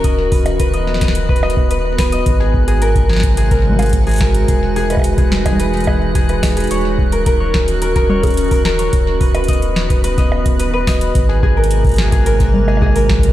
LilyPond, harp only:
\new Staff \with { instrumentName = "Harp" } { \time 4/4 \key ces \major \tempo 4 = 108 dis''16 r16 b'16 r16 b'16 dis''16 r16 b'16 r16 b'16 dis''16 r16 b'16 r16 b'16 dis''16 | r16 aes'16 r16 aes'16 bes'16 r16 aes'16 r16 aes'16 bes'16 r16 aes'16 r16 aes'16 bes'16 r16 | gis'16 r16 gis'16 b'16 r16 gis'16 r16 gis'16 b'16 r16 gis'16 r16 gis'16 b'16 r16 gis'16 | des''16 r8 bes'16 bes'16 des''16 r8 bes'16 bes'16 des''16 r8 bes'16 bes'16 des''16 |
r8 b'16 b'16 dis''16 r8 b'16 b'16 dis''16 r8 b'16 b'16 dis''16 r16 | r16 aes'16 aes'16 bes'16 r8 aes'16 aes'16 bes'16 r8 aes'16 aes'16 bes'16 r8 | }